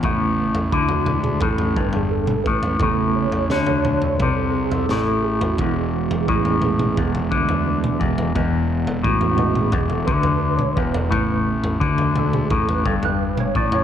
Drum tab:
SD |----------------|----o-------o---|----------------|----------------|
T2 |------oo-----o--|------o---------|------oo-----o--|------oo-----o--|
FT |o--o-oo-oo-o---o|o--o-oooo--o---o|o--o-oo-oo-o---o|o--o-oo-oo-o---o|
BD |o---o---o-o---o-|o-------o-------|o---o---o-o---o-|o---o---o-o---o-|

SD |----------------|
T2 |------oo-----o--|
FT |o--o-oo-oo-o---o|
BD |o---o---o-o---o-|